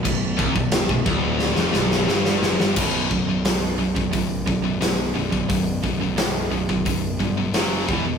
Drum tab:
CC |x---x-----------|x---------------|----------------|
HH |----------------|----o---o---o---|o---o---o---o---|
SD |----o---oooooooo|----o-------o---|----o-------o---|
BD |o-oo-oo---------|o-o----oo-o----o|o-o----oo-o---o-|